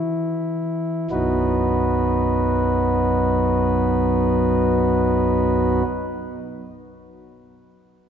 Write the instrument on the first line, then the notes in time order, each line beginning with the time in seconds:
pipe organ
Already playing: E3 E4
1.11 B1 F#2 F#3 B3 D#4 F#4 B4